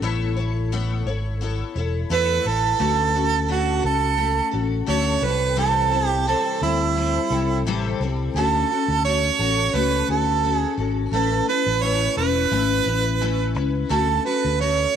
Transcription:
0.02 fingered electric bass A1, steel-string acoustic guitar A3 B3 E4 A4 C#5
0.37 steel-string acoustic guitar E4 A4 C#5
0.72 steel-string acoustic guitar A3 B3 E4 A4 C#5
1.06 fingered electric bass G#1, steel-string acoustic guitar E4 A4 C#5
1.41 steel-string acoustic guitar B3 E4 A4 C#5
1.75 fingered electric bass E1, steel-string acoustic guitar E4 A4 C#5
2.10 fingered electric bass E2, steel-string acoustic guitar A3 B3 E4 A4 C#5, harmonica B4
2.45 fingered electric bass A1, steel-string acoustic guitar E4 A4 C#5, harmonica A4
2.79 fingered electric bass D2, steel-string acoustic guitar D3 A3 C#4 F#4 A4
3.13 steel-string acoustic guitar C#4 F#4 A4
3.48 steel-string acoustic guitar D3 A3 C#4 F#4 A4, harmonica F#4
3.82 fingered electric bass C#2, steel-string acoustic guitar C#4 F#4 A4, harmonica A4
4.17 steel-string acoustic guitar A3 C#4 F#4 A4
4.51 fingered electric bass A1, steel-string acoustic guitar C#4 F#4 A4
4.86 fingered electric bass D2, steel-string acoustic guitar D3 A3 C#4 F#4 A4, harmonica C#5
5.21 fingered electric bass C2, steel-string acoustic guitar G3 C4 E4 A4, harmonica B4
5.56 steel-string acoustic guitar C3 E3 G3 C4 E4 A4, harmonica A4
5.91 steel-string acoustic guitar G3 C4 E4 A4
6.08 harmonica G4
6.27 steel-string acoustic guitar C3 E3 G3 C4 E4 A4, harmonica A4
6.61 fingered electric bass D2, steel-string acoustic guitar G3 C4 E4 A4, harmonica E4
6.96 steel-string acoustic guitar G3 C4 E4 A4
7.31 fingered electric bass C2, steel-string acoustic guitar G3 C4 E4 A4
7.64 fingered electric bass A1, steel-string acoustic guitar C3 E3 G3 C4 E4 A4
8.00 fingered electric bass C2, steel-string acoustic guitar G3 C4 E4 A4
8.35 fingered electric bass D2, steel-string acoustic guitar D3 A3 C#4 F#4 A4, harmonica A4
8.70 steel-string acoustic guitar C#4 F#4 A4
8.88 fingered electric bass D2
9.05 steel-string acoustic guitar A3 C#4 F#4 A4, harmonica C#5
9.39 fingered electric bass A1, steel-string acoustic guitar C#4 F#4 A4
9.74 fingered electric bass C#2, steel-string acoustic guitar A3 C#4 F#4 A4, harmonica B4
10.08 fingered electric bass D2, steel-string acoustic guitar C#4 F#4 A4, harmonica A4
10.43 steel-string acoustic guitar A3 C#4 F#4 A4
10.56 harmonica G#4
10.77 fingered electric bass G#1, steel-string acoustic guitar C#4 F#4 A4
11.12 fingered electric bass A1, steel-string acoustic guitar A3 C#4 E4 B4, harmonica A4
11.47 steel-string acoustic guitar C#4 E4 B4, harmonica B4
11.66 fingered electric bass A1
11.82 steel-string acoustic guitar A3 C#4 E4 B4, harmonica C#5
12.16 fingered electric bass E1, steel-string acoustic guitar C#4 E4 B4, harmonica B4
12.51 fingered electric bass G#1, steel-string acoustic guitar A3 C#4 E4 B4
12.86 fingered electric bass A1, steel-string acoustic guitar C#4 E4 B4
13.21 steel-string acoustic guitar A3 C#4 E4 B4
13.55 fingered electric bass C#2, steel-string acoustic guitar C#4 E4 B4
13.89 fingered electric bass D2, steel-string acoustic guitar D3 A3 C#4 F#4 A4, harmonica A4
14.24 steel-string acoustic guitar C#4 F#4 A4, harmonica B4
14.44 fingered electric bass D2
14.59 steel-string acoustic guitar A3 C#4 F#4 A4, harmonica C#5

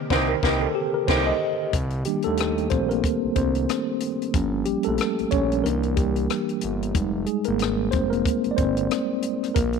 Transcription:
Already playing: analog synth pad C3 C4 G4 A#4, tine electric piano D3 D#3 A#3
0.10 analog synth bass C2, saxophone section C3 A#3 D#4, clean electric guitar G3 A#3 D#4 G4, tine electric piano C5, kick, snare
0.29 tine electric piano A#4
0.42 analog synth bass C2, saxophone section C3 A#3 D#4, clean electric guitar G3 A#3 D#4 G4, tine electric piano A#4, kick, snare
0.61 tine electric piano A4
0.75 tine electric piano G4
0.94 tine electric piano A#4
1.07 analog synth bass C2, saxophone section C3 A#3 D#4, clean electric guitar G3 A#3 D#4 G4, tine electric piano C5, kick, snare, crash
1.27 tine electric piano D#5
1.73 analog synth bass C2, kick, closed hi-hat
1.90 closed hi-hat
2.05 tine electric piano D#3 G3 A#3 D4 G4, closed hi-hat
2.22 analog synth bass D#2, tine electric piano A4, closed hi-hat
2.27 tine electric piano A3
2.37 cross-stick, closed hi-hat
2.58 closed hi-hat
2.70 analog synth bass A#1, tine electric piano C4 C5, kick, cross-stick, closed hi-hat
2.89 tine electric piano A#3 A#4, closed hi-hat
3.04 kick, closed hi-hat
3.24 analog synth bass C2
3.36 analog synth bass C2, tine electric piano C4 C5, kick, closed hi-hat
3.55 closed hi-hat
3.69 cross-stick, closed hi-hat
4.00 closed hi-hat
4.22 closed hi-hat
4.34 analog synth bass G1, tine electric piano F3 A#3 C#4, kick, closed hi-hat
4.65 analog synth bass A#1, tine electric piano G3 G4, closed hi-hat
4.83 analog synth bass A#1, tine electric piano A3 A4, closed hi-hat
4.98 cross-stick, closed hi-hat
5.19 analog synth bass A#1, closed hi-hat
5.31 analog synth bass A#1, tine electric piano C#4 C#5, kick, closed hi-hat
5.52 closed hi-hat
5.64 analog synth bass C2, tine electric piano E3 A#3 D4 A#4, closed hi-hat
5.83 closed hi-hat
5.96 analog synth bass C2, tine electric piano G3 G4, kick, closed hi-hat
6.16 closed hi-hat
6.30 cross-stick, closed hi-hat
6.49 closed hi-hat
6.61 analog synth bass G1, closed hi-hat
6.83 closed hi-hat
6.94 analog synth bass F1, tine electric piano G3 G#3 D#4, kick, closed hi-hat
7.26 tine electric piano G#3 G#4, closed hi-hat
7.44 analog synth bass G#1, tine electric piano A#3 A#4, closed hi-hat
7.59 cross-stick, closed hi-hat
7.91 analog synth bass F1, tine electric piano C4 C5, kick, cross-stick, closed hi-hat
8.10 tine electric piano A#3 A#4, closed hi-hat
8.26 kick, closed hi-hat
8.44 analog synth bass G1, closed hi-hat
8.51 tine electric piano D5
8.56 analog synth bass G1, tine electric piano C4 C5, kick, closed hi-hat
8.77 closed hi-hat
8.91 cross-stick, closed hi-hat
9.22 closed hi-hat
9.43 cross-stick, closed hi-hat
9.54 analog synth bass A#1, tine electric piano A#3 A#4, kick, closed hi-hat
9.73 closed hi-hat

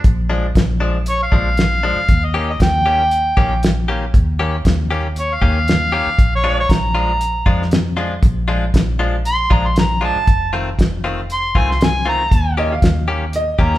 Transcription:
0.04 fingered electric bass A#1, kick, closed hi-hat
0.30 clean electric guitar F3 G#3 D4
0.55 fingered electric bass A#1, kick, snare, closed hi-hat
0.80 clean electric guitar F3 G#3 D4
1.06 harmonica C#5, closed hi-hat
1.23 harmonica F5
1.32 fingered electric bass A#1, clean electric guitar F3 G#3 D4, kick
1.57 snare, closed hi-hat
1.83 clean electric guitar F3 G#3 D4
1.96 muted fingered electric bass stroke
2.09 fingered electric bass D#2, kick, closed hi-hat
2.25 harmonica D#5
2.34 clean electric guitar D#3 A#3 C#4 G4
2.50 harmonica D#5
2.60 fingered electric bass D#2, harmonica G5, kick, snare, closed hi-hat
2.86 clean electric guitar D#3 A#3 C#4 G4
3.11 closed hi-hat
3.37 fingered electric bass A#1, clean electric guitar D#3 A#3 C#4 G4, kick
3.63 snare, closed hi-hat
3.88 clean electric guitar D#3 A#3 C#4 G4
4.14 fingered electric bass D#2, kick, closed hi-hat
4.39 clean electric guitar D#3 A#3 C#4 G4
4.65 fingered electric bass D#2, kick, snare, closed hi-hat
4.91 clean electric guitar D#3 A#3 C#4 G4
5.16 harmonica C#5, closed hi-hat
5.34 harmonica F5
5.41 fingered electric bass D#2, clean electric guitar D#3 A#3 C#4 G4, kick
5.68 snare, closed hi-hat
5.92 clean electric guitar D#3 A#3 C#4 G4
6.07 muted fingered electric bass stroke
6.19 fingered electric bass A#1, kick, closed hi-hat
6.35 harmonica C#5
6.44 clean electric guitar F3 G#3 D4 F4
6.60 harmonica C#5
6.69 fingered electric bass A#1, harmonica A#5, kick, snare, closed hi-hat
6.95 clean electric guitar F3 G#3 D4 F4
7.21 closed hi-hat
7.46 fingered electric bass F2, clean electric guitar F3 G#3 D4 F4, kick
7.62 snare
7.71 snare, closed hi-hat
7.97 clean electric guitar F3 G#3 D4 F4
8.22 fingered electric bass A#1, kick, closed hi-hat
8.48 clean electric guitar F3 G#3 D4 F4
8.74 fingered electric bass A#1, kick, snare, closed hi-hat
8.99 clean electric guitar F3 G#3 D4 F4
9.25 harmonica C6, closed hi-hat
9.50 fingered electric bass A#1, clean electric guitar F3 G#3 D4 F4, harmonica A#5, kick
9.67 harmonica C6
9.76 harmonica A#5, snare, closed hi-hat
10.01 clean electric guitar F3 G#3 D4 F4, harmonica A5
10.16 muted fingered electric bass stroke
10.27 fingered electric bass F1, kick, closed hi-hat
10.53 clean electric guitar D#3 A3 C4 F4
10.78 fingered electric bass F1, kick, snare, closed hi-hat
11.04 clean electric guitar D#3 A3 C4 F4
11.30 harmonica C6, closed hi-hat
11.55 fingered electric bass C2, clean electric guitar D#3 A3 C4 F4, harmonica G#5, kick
11.71 harmonica C6, snare
11.81 harmonica G#5, snare, closed hi-hat
12.05 clean electric guitar D#3 A3 C4 F4, harmonica A#5
12.31 fingered electric bass D#2, kick, closed hi-hat
12.57 clean electric guitar D#3 A#3 C#4 G4, upright piano D#5
12.68 upright piano E5
12.72 upright piano F5
12.82 fingered electric bass D#2, kick, snare, closed hi-hat
13.08 clean electric guitar D#3 A#3 C#4 G4
13.33 upright piano D#5, closed hi-hat
13.59 fingered electric bass D#2, clean electric guitar D#3 A#3 C#4 G4, harmonica A#5, kick
13.74 snare

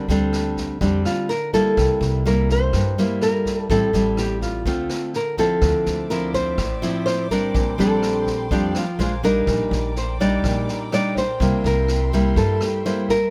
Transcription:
Already playing: nylon-string guitar D3 A#4
0.08 upright bass D2, nylon-string guitar G3 C4 D4 A4, snare
0.33 cross-stick, snare
0.57 kick, snare
0.81 upright bass F2, nylon-string guitar D3 G3 C4 D4 G4, kick, snare
1.05 nylon-string guitar F4, cross-stick, snare
1.29 nylon-string guitar A#4, snare
1.53 nylon-string guitar G3 A#3 E4 A4, kick, snare
1.77 upright bass C2, nylon-string guitar C3, kick, cross-stick, snare
2.01 upright bass C2, snare
2.25 nylon-string guitar G3 A#3 E4 A#4, snare
2.49 nylon-string guitar C5, kick, snare
2.73 upright bass G2, nylon-string guitar G2, kick, cross-stick, snare
2.98 nylon-string guitar G3 A#3 E4, snare
3.21 nylon-string guitar A#4, cross-stick, snare
3.46 kick, snare
3.58 nylon-string guitar A4
3.70 upright bass A1, nylon-string guitar A2 G3 C4 E4 A4, kick, snare
3.93 upright bass A1, nylon-string guitar G3 C4 E4, snare
4.17 nylon-string guitar G4, cross-stick, snare
4.42 nylon-string guitar F4, kick, snare
4.65 upright bass D2, nylon-string guitar D3 A3 C4 F4, kick, snare
4.90 cross-stick, snare
5.13 nylon-string guitar A#4, snare
5.37 nylon-string guitar F3 C4 E4 A4, kick, snare
5.62 upright bass D2, nylon-string guitar D3, string section C5 D5 E5 D6, kick, cross-stick, snare
5.86 upright bass D2, snare
6.10 nylon-string guitar F3 C4 E4 A#4, snare
6.34 nylon-string guitar C5, kick, snare
6.58 upright bass A1, nylon-string guitar A2, kick, cross-stick, snare
6.82 nylon-string guitar F3 C4 E4, snare
7.06 nylon-string guitar C5, cross-stick, snare
7.31 nylon-string guitar G3 C4 D4 A#4, kick, snare
7.54 upright bass A#1, nylon-string guitar A#2, string section G5 C6, kick, snare
7.78 upright bass A#1, nylon-string guitar G3 C4 D4 A4, snare
8.03 cross-stick, snare
8.27 kick, snare
8.51 upright bass F2, nylon-string guitar F3 G3 C4 D4 G4, kick, snare
8.75 nylon-string guitar F4, cross-stick, snare
8.98 upright bass A#1, nylon-string guitar G#3 D4 F4 C5, string section A#4 F5 G#5 D6, snare
9.23 nylon-string guitar G3 D4 D#4 A#4, kick, snare
9.47 upright bass A#1, nylon-string guitar A#2, string section A#4 D5 G5 D6, kick, cross-stick, snare
9.71 upright bass A#1, snare
9.96 nylon-string guitar C5, snare
10.20 nylon-string guitar G3 D4 D#4 D5, kick, snare
10.44 upright bass A#1, nylon-string guitar A#2, kick, cross-stick, snare
10.68 snare
10.92 nylon-string guitar G3 D4 D#4 D5, cross-stick, snare
11.16 nylon-string guitar C5, kick, snare
11.40 upright bass C2, nylon-string guitar C3 G3 A#3 E4, string section E5 C6, kick, snare
11.64 upright bass C2, nylon-string guitar A#4, snare
11.88 cross-stick, snare
12.12 nylon-string guitar G3 A#3 E4, kick, snare
12.36 upright bass G2, nylon-string guitar G2 A4, kick, snare
12.61 nylon-string guitar G4, cross-stick, snare
12.85 nylon-string guitar G3 A#3 E4 C5, snare
13.09 nylon-string guitar A#4, kick, snare

